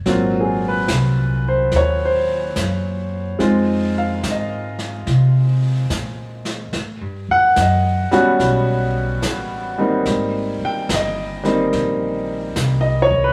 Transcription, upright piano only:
0.06 2.40 A#2 medium
0.06 2.39 F#3 medium
0.06 2.40 C4 soft
0.06 2.40 F4 medium
0.41 0.64 G#4 medium
0.68 1.44 B4 medium
1.48 1.74 C5 medium
1.76 2.02 C#5 medium
2.05 2.83 C5 medium
3.39 5.73 G#3 medium
3.39 5.74 C4 soft
3.39 5.74 D#4 soft
3.39 5.74 F4 medium
3.98 4.24 F5 medium
4.30 5.07 D#5 medium
7.31 7.57 F#5 medium
7.60 8.38 D#5 medium
8.11 8.37 G3 medium
8.11 8.37 B3 medium
8.11 8.38 C#4 medium
8.11 8.38 F#4 medium
9.78 10.84 G3 medium
9.78 10.84 A#3 medium
9.78 10.84 C4 medium
9.78 10.85 D#4 medium
10.65 10.90 G5 medium
10.95 11.71 D#5 medium
11.44 11.69 G3 medium
11.44 11.70 A#3 medium
11.44 11.70 C4 medium
11.44 11.70 D#4 medium
12.81 13.09 D#5 medium
13.02 13.20 C#5 medium
13.24 13.33 B4 medium

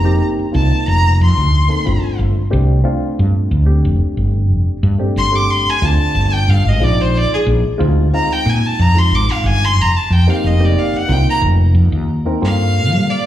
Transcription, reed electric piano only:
0.04 0.46 A#3 medium
0.04 0.46 C4 medium
0.04 0.46 D#4 medium
0.04 0.46 G4 loud
0.52 1.49 A#3 medium
0.52 1.50 C4 medium
0.52 1.50 D#4 medium
0.52 1.50 F4 medium
1.68 1.83 A#3 medium
1.68 1.83 C4 medium
1.68 1.83 D#4 medium
1.68 1.84 A4 medium
1.84 2.41 A3 medium
1.84 2.41 C4 medium
1.84 2.41 D4 medium
1.84 2.41 F4 medium
2.50 2.79 A3 medium
2.50 2.79 C4 medium
2.50 2.79 D4 medium
2.50 2.80 G4 loud
2.84 3.53 A3 medium
2.84 3.53 C4 medium
2.84 3.54 D4 medium
2.84 3.54 F4 loud
3.65 4.76 A3 medium
3.65 4.77 C4 medium
3.65 4.77 D4 medium
3.65 4.77 G4 medium
4.98 5.27 A3 medium
4.98 5.27 C4 medium
4.98 5.28 D4 medium
4.98 5.27 G4 medium
5.31 5.73 A3 medium
5.31 5.74 C4 medium
5.31 5.74 D4 medium
5.31 5.74 G4 medium
5.82 6.78 A3 medium
5.82 6.79 C4 medium
5.82 6.79 D4 medium
5.82 6.79 F4 medium
6.80 7.63 G#3 medium
6.80 7.63 C4 medium
6.80 7.64 D#4 medium
6.80 7.64 F4 medium
7.78 8.07 G#3 loud
7.78 8.07 C4 medium
7.78 8.07 D#4 medium
7.78 8.08 F4 loud
8.13 8.82 G#3 medium
8.13 8.82 C4 medium
8.13 8.83 D#4 medium
8.13 8.82 F4 medium
8.95 9.78 G#3 medium
8.95 9.78 C4 medium
8.95 9.78 D#4 medium
8.95 9.79 F4 medium
10.27 10.55 A#3 medium
10.27 10.55 C4 medium
10.27 10.56 D#4 medium
10.27 10.56 G4 medium
10.60 11.02 A#3 medium
10.60 11.02 C4 medium
10.60 11.02 D#4 medium
10.60 11.02 G4 medium
11.08 12.06 A#3 medium
11.08 12.06 C4 medium
11.08 12.06 D#4 medium
11.08 12.06 F4 medium
12.25 12.40 A#3 medium
12.25 12.40 C4 medium
12.25 12.40 D#4 medium
12.25 12.40 A#4 loud
12.41 13.26 A#3 medium
12.41 13.26 C4 medium
12.41 13.26 F4 medium
12.41 13.26 A4 medium

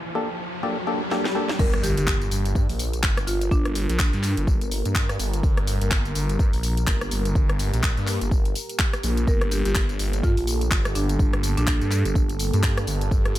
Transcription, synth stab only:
0.15 0.29 A#3 medium
0.15 0.29 D4 medium
0.15 0.29 G4 medium
0.15 0.29 A4 loud
0.63 0.77 A#3 loud
0.63 0.77 D4 medium
0.63 0.77 G4 medium
0.63 0.77 A4 loud
0.87 1.01 A#3 loud
0.87 1.01 D4 medium
0.87 1.01 G4 medium
0.87 1.01 A4 loud
1.11 1.25 A#3 loud
1.11 1.25 D4 medium
1.11 1.25 G4 medium
1.11 1.25 A4 loud
1.35 1.49 A#3 loud
1.35 1.49 D4 loud
1.35 1.49 G4 medium
1.35 1.49 A4 loud

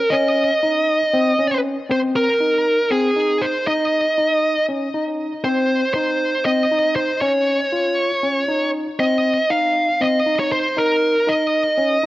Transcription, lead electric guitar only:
0.00 0.14 A#4 medium
0.10 1.59 D#5 loud
1.91 1.98 C5 medium
2.16 2.91 A#4 medium
2.92 3.44 G#4 medium
3.42 3.67 C5 medium
3.67 4.65 D#5 medium
5.44 5.93 C5 medium
5.94 6.45 C5 medium
6.45 6.95 D#5 medium
6.96 7.21 C5 medium
7.21 8.70 C#5 medium
8.99 9.52 D#5 medium
9.50 10.02 F5 medium
10.01 10.36 D#5 medium
10.39 10.51 C#5 medium
10.52 10.78 C5 medium
10.78 11.30 A#4 medium
11.29 12.06 D#5 medium

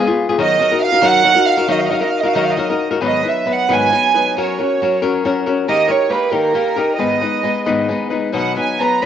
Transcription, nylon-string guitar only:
0.07 0.29 B3 soft
0.07 0.28 F4 medium
0.07 0.28 G#4 medium
0.29 0.38 B3 soft
0.29 0.39 F4 medium
0.29 0.39 G#4 medium
0.38 0.60 D#3 medium
0.38 0.58 F#3 medium
0.38 0.59 D#4 medium
0.38 0.59 F#4 medium
0.38 0.60 A#4 medium
0.59 0.71 F#3 medium
0.59 0.71 D#4 medium
0.59 0.71 F#4 medium
0.59 0.70 A#4 medium
0.71 0.92 D#4 soft
0.71 0.91 F#4 soft
0.71 0.91 A#4 medium
0.92 1.01 D#4 medium
0.92 1.00 F#4 medium
0.92 1.02 A#4 medium
1.01 1.25 D#3 medium
1.01 1.23 F#3 medium
1.01 1.23 D#4 medium
1.01 1.24 F#4 medium
1.01 1.25 A#4 medium
1.24 1.36 F#3 medium
1.24 1.35 D#4 medium
1.24 1.35 F#4 medium
1.24 1.33 A#4 medium
1.34 1.57 D#4 medium
1.34 1.57 F#4 medium
1.34 1.56 A#4 medium
1.57 1.67 D#4 medium
1.57 1.67 F#4 medium
1.57 1.68 A#4 medium
1.68 1.91 D#3 medium
1.68 1.88 F#3 medium
1.68 1.89 D#4 medium
1.68 1.89 F#4 medium
1.68 1.90 A#4 medium
1.90 2.02 F#3 medium
1.90 2.01 D#4 medium
1.90 2.01 F#4 medium
1.90 1.99 A#4 medium
2.01 2.24 D#4 soft
2.01 2.24 F#4 soft
2.01 2.22 A#4 medium
2.23 2.35 D#4 soft
2.23 2.35 F#4 soft
2.23 2.35 A#4 medium
2.35 2.58 D#3 medium
2.35 2.56 F#3 medium
2.35 2.56 D#4 medium
2.35 2.57 F#4 medium
2.35 2.57 A#4 medium
2.57 2.69 F#3 medium
2.57 2.69 D#4 medium
2.57 2.69 F#4 medium
2.57 2.69 A#4 medium
2.70 2.91 D#4 soft
2.70 2.90 F#4 medium
2.70 2.89 A#4 medium
2.91 3.01 D#4 soft
2.91 3.01 F#4 medium
2.91 3.01 A#4 medium
3.01 3.25 G#2 medium
3.01 3.25 D#3 medium
3.01 3.24 F#3 medium
3.01 3.23 B3 medium
3.01 3.23 D#4 medium
3.01 3.22 B4 medium
3.23 3.44 F#3 soft
3.23 3.45 B3 soft
3.23 3.46 D#4 soft
3.23 3.46 B4 soft
3.45 3.69 F#3 soft
3.45 3.69 B3 medium
3.45 3.68 D#4 medium
3.45 3.68 B4 medium
3.69 3.92 G#2 soft
3.69 3.92 D#3 medium
3.69 3.90 F#3 medium
3.69 3.90 B3 soft
3.69 3.91 D#4 medium
3.69 3.92 B4 medium
3.91 4.14 F#3 soft
3.91 4.14 B3 medium
3.91 4.14 D#4 medium
3.91 4.13 B4 medium
4.14 4.36 F#3 soft
4.14 4.38 B3 soft
4.14 4.37 D#4 soft
4.14 4.37 B4 medium
4.37 4.59 F#3 medium
4.37 4.59 C#4 medium
4.37 4.59 F#4 medium
4.37 4.58 A#4 medium
4.59 4.81 C#4 soft
4.59 4.82 F#4 soft
4.59 4.81 A#4 soft
4.82 5.02 F#3 medium
4.82 5.01 C#4 medium
4.82 5.02 F#4 medium
4.82 5.01 A#4 medium
5.02 5.24 F#3 medium
5.02 5.24 C#4 medium
5.02 5.24 F#4 medium
5.02 5.24 A#4 medium
5.25 5.47 F#3 medium
5.25 5.47 C#4 medium
5.25 5.46 F#4 medium
5.25 5.45 A#4 medium
5.46 5.69 C#4 medium
5.46 5.68 F#4 medium
5.46 5.67 A#4 medium
5.68 5.90 D#3 medium
5.68 5.90 A#3 medium
5.68 5.88 D#4 medium
5.68 5.87 G4 medium
5.68 5.86 A#4 medium
5.88 6.09 D#4 soft
5.88 6.09 G4 soft
5.88 6.11 A#4 soft
6.10 6.31 A#3 medium
6.10 6.31 D#4 medium
6.10 6.30 G4 medium
6.10 6.30 A#4 medium
6.31 6.55 D#3 medium
6.31 6.53 A#3 medium
6.31 6.54 D#4 medium
6.31 6.53 G4 soft
6.31 6.54 A#4 medium
6.54 6.77 A#3 medium
6.54 6.77 D#4 medium
6.54 6.76 G4 medium
6.54 6.75 A#4 soft
6.76 6.99 D#4 soft
6.76 6.99 G4 medium
6.76 6.99 A#4 medium
6.98 7.22 G#2 medium
6.98 7.22 D#3 medium
6.98 7.21 G#3 medium
6.98 7.21 B3 medium
6.98 7.21 D#4 medium
6.98 7.20 B4 medium
7.21 7.42 G#3 soft
7.21 7.43 B3 soft
7.21 7.44 D#4 soft
7.21 7.44 B4 soft
7.43 7.66 G#3 soft
7.43 7.66 B3 soft
7.43 7.65 D#4 medium
7.43 7.65 B4 medium
7.66 7.90 G#2 medium
7.66 7.90 D#3 soft
7.66 7.87 G#3 medium
7.66 7.89 B3 medium
7.66 7.89 D#4 medium
7.66 7.89 B4 medium
7.89 8.11 G#3 medium
7.89 8.11 B3 medium
7.89 8.10 D#4 medium
7.89 8.09 B4 medium
8.10 8.33 G#3 soft
8.10 8.33 B3 soft
8.10 8.32 D#4 medium
8.10 8.33 B4 medium
8.32 8.57 B2 medium
8.32 8.56 D#3 medium
8.32 8.56 F#3 medium
8.32 8.56 B3 medium
8.32 8.56 D#4 medium
8.32 8.55 B4 medium
8.57 8.78 F#3 soft
8.57 8.79 B3 soft
8.57 8.79 D#4 soft
8.57 8.80 B4 soft
8.80 9.01 F#3 soft
8.80 9.01 B3 medium
8.80 9.01 D#4 medium
8.80 9.01 B4 medium
9.02 9.06 B2 soft
9.02 9.06 F#3 medium
9.02 9.06 B3 medium
9.02 9.06 D#4 medium
9.02 9.06 B4 medium

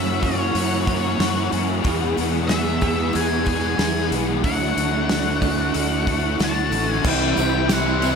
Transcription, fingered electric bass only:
0.00 0.51 F#2 medium
0.55 1.16 F#2 medium
1.19 1.50 F#2 medium
1.53 1.83 F#2 medium
1.85 2.15 E2 medium
2.18 3.11 E2 medium
3.15 3.76 E2 medium
3.79 4.10 E2 medium
4.11 4.42 B1 medium
4.44 4.75 D2 loud
4.77 5.70 D2 medium
5.75 6.36 D2 medium
6.40 6.70 D2 medium
6.72 7.02 A1 medium
7.04 7.35 C2 loud
7.38 8.15 C2 medium

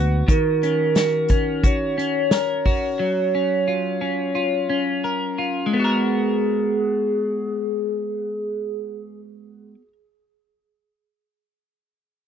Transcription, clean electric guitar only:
0.00 0.29 G#3 medium
0.00 0.36 B3 medium
0.00 0.96 F#4 medium
0.28 3.00 D#3 medium
0.63 1.30 C#4 medium
0.97 1.63 F#4 medium
1.30 1.97 C#4 medium
1.64 2.65 F#4 medium
1.98 3.34 C#4 medium
2.32 5.04 A#4 medium
2.66 3.67 F#4 medium
2.99 5.66 F#3 medium
3.35 4.00 C#4 medium
3.68 4.34 F4 medium
4.01 4.68 C#4 medium
4.35 5.37 F4 medium
4.70 5.73 C#4 medium
5.04 5.84 A#4 medium
5.38 5.79 F4 medium
5.66 9.74 G#3 medium
5.73 9.81 B3 medium
5.80 9.88 F#4 medium
5.84 9.92 A#4 medium

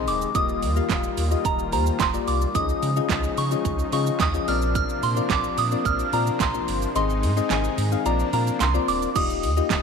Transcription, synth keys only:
0.00 0.29 C4 medium
0.00 0.29 D#4 medium
0.00 0.29 G#4 medium
0.00 0.29 D#5 medium
0.35 0.70 A#3 medium
0.35 0.70 F4 medium
0.35 0.70 G4 medium
0.35 0.70 D#5 medium
0.76 1.23 A#3 medium
0.76 1.23 F4 medium
0.76 1.23 G4 medium
0.76 1.23 F5 medium
1.31 1.66 A#3 medium
1.31 1.66 F4 medium
1.31 1.66 G4 medium
1.31 1.66 D#5 medium
1.72 2.07 A#3 medium
1.72 2.07 F4 medium
1.72 2.08 G4 medium
1.72 2.08 C5 medium
2.14 2.49 A#3 medium
2.14 2.49 F4 medium
2.14 2.49 G4 medium
2.14 2.49 D5 medium
2.55 2.90 C#4 medium
2.55 2.90 F4 medium
2.55 2.90 G#4 medium
2.55 2.90 D#5 medium
2.96 3.43 C#4 medium
2.96 3.43 F4 medium
2.96 3.43 G#4 medium
2.96 3.43 D#5 medium
3.51 3.86 C#4 medium
3.51 3.86 F4 medium
3.51 3.86 G#4 medium
3.51 3.87 D#5 medium
3.93 4.28 C#4 medium
3.93 4.28 F4 medium
3.93 4.28 G#4 medium
3.93 4.28 D#5 medium
4.34 4.48 C#4 medium
4.34 4.47 F4 medium
4.34 4.48 G#4 medium
4.34 4.48 D#5 medium
4.48 5.06 C4 medium
4.48 5.06 F4 medium
4.48 5.06 A#4 medium
4.48 5.06 D5 medium
5.16 5.63 C4 medium
5.16 5.63 F4 medium
5.16 5.63 A#4 medium
5.16 5.63 D5 medium
5.71 6.06 C4 medium
5.71 6.07 F4 medium
5.71 6.07 A#4 medium
5.71 6.07 D5 medium
6.13 6.48 C4 medium
6.13 6.48 F4 medium
6.13 6.48 A#4 medium
6.13 6.48 D5 medium
6.54 6.89 C4 medium
6.54 6.89 F4 medium
6.54 6.89 A#4 medium
6.54 6.89 C5 medium
6.95 7.30 C4 medium
6.95 7.30 D#4 medium
6.95 7.30 G#4 medium
6.95 7.31 D#5 medium
7.37 7.83 C4 medium
7.37 7.83 D#4 medium
7.37 7.83 G#4 medium
7.37 7.83 D#5 medium
7.92 8.04 C4 medium
7.92 8.06 D#4 medium
7.92 8.06 G#4 medium
7.92 8.06 F5 medium
8.05 8.29 C4 medium
8.05 8.29 F4 medium
8.05 8.29 A#4 medium
8.05 8.29 D5 medium
8.33 8.68 C4 medium
8.33 8.68 F4 medium
8.33 8.68 A#4 medium
8.33 8.68 F5 medium
8.74 9.09 C4 medium
8.74 9.09 F4 medium
8.74 9.09 A#4 medium
8.74 9.09 D5 loud
9.15 9.50 A#3 medium
9.15 9.51 D#4 medium
9.15 9.51 F4 medium
9.15 9.51 G4 medium
9.15 9.51 D#5 medium
9.57 9.82 A#3 medium
9.57 9.82 D#4 medium
9.57 9.82 F4 medium
9.57 9.82 G4 medium
9.57 9.82 D#5 medium

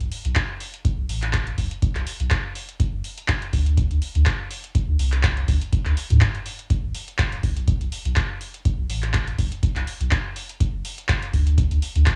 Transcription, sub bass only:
0.01 0.09 B1 loud
0.25 0.33 B1 medium
0.98 1.06 B1 loud
1.09 1.53 A1 loud
1.58 1.68 B1 loud
1.96 2.04 B1 loud
2.20 2.28 B1 medium
2.93 3.02 F#1 medium
3.53 3.85 D2 medium
3.91 3.99 D2 loud
4.15 4.23 D2 medium
4.88 4.97 D2 loud
4.99 5.44 C2 loud
5.48 5.58 D2 loud
5.86 5.94 D2 medium
6.10 6.19 D2 medium
6.83 6.92 A1 medium
7.32 7.40 D1 medium
7.43 7.53 C2 loud
7.57 7.74 B1 loud
7.81 7.89 B1 loud
8.05 8.14 B1 medium
8.79 8.87 B1 loud
8.90 9.34 A1 loud
9.38 9.48 B1 loud
9.76 9.84 B1 loud
10.01 10.09 B1 medium
10.74 10.82 F#1 medium
11.34 11.66 D2 medium
11.71 11.79 D2 loud
11.96 12.04 D2 medium

